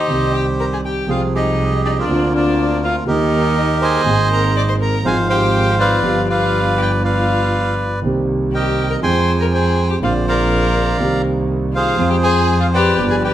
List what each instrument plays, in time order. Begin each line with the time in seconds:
Already playing: violin D#4, bandoneon G4 C5 D#5
0.07 double bass C2, grand piano C2 C3 D#3 G3 C4
0.11 grand piano G4
0.34 violin G4, bandoneon G5
0.60 violin A#4, bandoneon A#5
0.73 violin G#4, bandoneon G#5
0.85 violin G4, bandoneon G5
1.07 double bass C2, grand piano C2 C3 F3 G#3 C4, violin F4, bandoneon G#4 F5
1.11 grand piano G5
1.34 violin D#4, bandoneon G4 G#4 D#5
1.85 violin D4, bandoneon D5
1.90 violin D#4, bandoneon D#5
1.99 violin D4, bandoneon F4 A#4 D5
2.07 double bass D2, grand piano D2 D3 A#3 C4 F4
2.34 violin D4, bandoneon F4 A#4 D5
2.85 violin F4, bandoneon F5
3.05 double bass D#2, grand piano D#2 D#3 G3 A#3, bandoneon G4 A#4
3.09 violin D#4, grand piano G4, bandoneon D#5
3.81 violin G#4, bandoneon C5 D#5 G#5
4.04 grand piano G#1 G#2 D#3 A#3 C4, double bass G#1
4.08 grand piano G#4
4.32 violin A#4, bandoneon A#5
4.57 violin D5, bandoneon D6
4.68 violin C5, bandoneon C6
4.81 violin A#4, bandoneon A#5
5.03 double bass G#1, grand piano G#1 G#2 F3 G#3 C4 F4, violin G#4, bandoneon C5 F5 G#5
5.29 violin G4, bandoneon C5 G5
5.79 violin F4, bandoneon B4 D5 F5
6.01 double bass G1, grand piano G1 G2 F3 B3 D4 G4
6.29 violin F4, bandoneon B4 D5 F5
6.78 violin G4
6.82 bandoneon G5
7.04 violin F4, bandoneon B4 D5 F5
8.02 double bass C2, grand piano C2 C3 D#3 A#3 C4
8.06 grand piano G4
8.53 violin G4, bandoneon A#4 D#5 G5
8.90 violin A#4, bandoneon A#5
9.01 double bass F2, grand piano F2 F3 G#3 C4, violin C5, bandoneon G5 G#5 C6
9.05 grand piano G#4
9.40 violin A#4, bandoneon A#5
9.53 violin G#4, bandoneon C5 G#5
9.90 violin G4, bandoneon G5
10.00 double bass A#1, grand piano A#1 A#2 D3 A#3 C4, violin F4, bandoneon C5 D5 F5
10.05 grand piano F4
10.28 violin A#4, bandoneon D5 F5 A#5
10.98 grand piano C2 C3 D#3 A#3 C4, double bass C2
11.02 grand piano G4
11.74 violin F4, bandoneon G#4 C5 F5
11.96 grand piano F2 F3 G#3 C4 G#4, double bass F2
12.10 violin G4, bandoneon G5
12.23 violin G#4, bandoneon C5 G#5
12.60 violin F4, bandoneon F5
12.74 violin G4, bandoneon B4 D5 G5
12.97 double bass G1, grand piano G1 G2 F3 B3 D4
13.01 grand piano G4
13.10 violin G#4, bandoneon G#5
13.23 violin G4, bandoneon B4 D5 G5